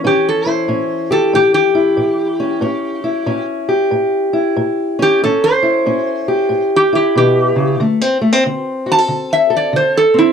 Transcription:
0.00 2.63 E3 medium
0.00 0.46 E4 medium
0.04 0.64 A2 medium
0.04 0.68 C#4 medium
0.04 0.26 G4 medium
0.29 0.48 A4 medium
0.46 1.74 E4 medium
0.46 1.11 C5 medium
0.68 1.29 A2 medium
0.68 2.39 C#4 medium
1.11 2.64 G4 medium
1.11 1.33 A4 medium
1.33 1.94 A2 medium
1.33 1.53 G4 medium
1.54 3.45 G4 medium
1.75 3.03 E4 medium
1.97 2.58 A2 medium
2.40 2.62 C#4 medium
2.61 3.22 A2 medium
2.61 3.26 C#4 medium
3.04 4.32 E4 medium
3.26 3.87 A2 medium
3.26 4.98 C#4 medium
3.69 5.19 G4 medium
3.91 4.52 A2 medium
4.33 5.19 E4 medium
4.56 5.17 A2 medium
4.99 5.20 C#4 medium
4.99 5.23 G4 medium
5.23 5.83 A2 medium
5.23 5.85 C#4 medium
5.23 5.44 A4 medium
5.44 6.69 C5 loud
5.63 6.91 E4 medium
5.86 6.46 A2 medium
5.86 7.78 C#4 medium
6.28 7.78 G4 medium
6.49 7.10 A2 medium
6.76 6.94 G4 medium
6.93 7.78 E4 medium
6.93 7.16 G4 medium
7.15 7.55 B2 medium
7.15 7.80 G4 medium
7.56 7.79 C#3 medium
7.80 8.40 D3 medium
7.80 8.01 A3 medium
8.01 8.21 C4 medium
8.21 8.33 A3 medium
8.33 8.45 C4 soft
8.46 9.06 D3 medium
8.46 10.13 C4 medium
8.86 8.98 F#4 medium
8.92 9.32 A5 loud
8.98 9.49 A4 medium
9.08 9.69 D3 medium
9.33 9.53 E5 medium
9.50 10.33 A4 medium
9.57 9.76 D5 medium
9.73 10.33 D3 medium
9.73 9.96 C5 medium
9.97 10.17 A4 medium
10.14 10.33 C4 medium
10.18 10.33 E4 medium

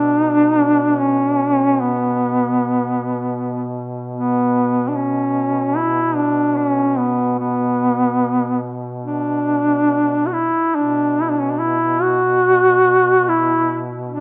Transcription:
0.00 10.59 B2 soft
0.00 0.20 D4 medium
0.20 0.32 D#4 medium
0.32 0.45 D4 medium
0.45 0.57 D#4 medium
0.57 1.02 D4 medium
1.00 1.82 C#4 medium
1.80 3.77 B3 medium
4.16 4.90 B3 medium
4.88 4.97 D4 medium
4.96 5.78 C#4 medium
5.77 6.17 E4 medium
6.16 6.58 D4 medium
6.57 6.99 C#4 medium
6.98 7.39 B3 medium
7.39 8.74 B3 medium
9.05 10.28 D4 medium
10.26 10.34 F#4 medium
10.33 10.77 E4 medium
10.75 14.20 B2 soft
10.75 11.24 D4 medium
11.22 11.32 E4 medium
11.31 11.42 D4 medium
11.41 11.52 C#4 medium
11.50 11.60 D4 medium
11.59 12.03 E4 medium
12.02 13.30 F#4 medium
13.28 13.83 E4 medium
14.08 14.20 D4 medium

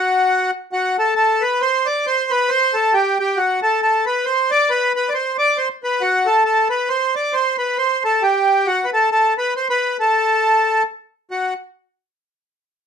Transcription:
0.00 0.51 F#4 medium
0.73 0.97 F#4 medium
0.99 1.14 A4 medium
1.16 1.42 A4 medium
1.41 1.62 B4 medium
1.61 1.87 C5 medium
1.86 2.06 D5 medium
2.07 2.32 C5 medium
2.31 2.50 B4 medium
2.49 2.75 C5 loud
2.74 2.94 A4 medium
2.94 3.18 G4 medium
3.20 3.38 G4 medium
3.37 3.60 F#4 medium
3.63 3.81 A4 medium
3.82 4.05 A4 medium
4.06 4.25 B4 medium
4.25 4.51 C5 medium
4.51 4.70 D5 medium
4.70 4.93 B4 medium
4.96 5.09 B4 medium
5.09 5.13 D5 medium
5.14 5.37 C5 medium
5.39 5.58 D5 medium
5.57 5.69 C5 medium
5.84 6.02 B4 medium
6.01 6.27 F#4 medium
6.26 6.43 A4 medium
6.45 6.68 A4 medium
6.70 6.89 B4 medium
6.89 7.15 C5 medium
7.16 7.34 D5 medium
7.33 7.56 C5 medium
7.58 7.78 B4 medium
7.78 8.03 C5 medium
8.05 8.23 A4 medium
8.22 8.67 G4 medium
8.67 8.85 F#4 medium
8.85 8.91 B4 medium
8.93 9.10 A4 medium
9.12 9.34 A4 medium
9.38 9.54 B4 medium
9.56 9.68 C5 medium
9.70 9.97 B4 medium
10.00 10.83 A4 medium
11.31 11.54 F#4 medium

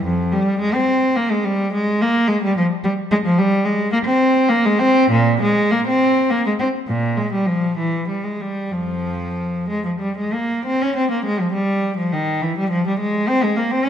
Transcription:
0.05 0.32 F2 medium
0.32 0.60 G3 medium
0.60 0.73 G#3 medium
0.74 1.16 C4 medium
1.16 1.30 A#3 medium
1.31 1.45 G#3 medium
1.45 1.73 G3 medium
1.73 2.00 G#3 medium
2.01 2.29 A#3 medium
2.28 2.42 G#3 medium
2.43 2.56 G3 medium
2.57 2.65 F3 medium
2.84 2.92 G3 medium
3.11 3.17 G#3 medium
3.25 3.38 F3 medium
3.38 3.65 G3 loud
3.65 3.93 G#3 medium
3.92 3.98 A#3 medium
4.06 4.49 C4 medium
4.49 4.65 A#3 medium
4.65 4.81 G#3 medium
4.79 5.11 C4 loud
5.11 5.41 A#2 medium
5.42 5.71 G#3 medium
5.71 5.86 A#3 medium
5.87 6.30 C4 medium
6.30 6.45 A#3 medium
6.47 6.52 G#3 medium
6.59 6.67 C4 medium
6.88 7.18 A#2 medium
7.17 7.33 G#3 medium
7.33 7.48 G3 medium
7.46 7.78 F3 medium
7.78 8.09 E3 medium
8.08 8.24 G3 medium
8.24 8.40 G#3 medium
8.41 8.73 G3 medium
8.72 9.65 F2 soft
8.72 9.69 F3 medium
9.69 9.84 G#3 medium
9.85 9.91 F3 medium
10.00 10.16 G3 medium
10.18 10.33 G#3 medium
10.33 10.65 A#3 medium
10.65 10.79 C4 medium
10.82 10.95 C#4 medium
10.96 11.10 C4 medium
11.11 11.24 A#3 medium
11.25 11.39 G#3 medium
11.40 11.54 F3 medium
11.53 11.96 G3 medium
11.97 12.12 F3 medium
12.13 12.42 D#3 medium
12.42 12.57 E3 medium
12.58 12.72 G3 medium
12.70 12.85 F3 medium
12.87 13.01 G3 medium
13.00 13.28 G#3 medium
13.28 13.43 C4 loud
13.43 13.58 G#3 medium
13.56 13.72 A#3 medium
13.71 13.86 C4 medium
13.85 13.89 C#4 medium

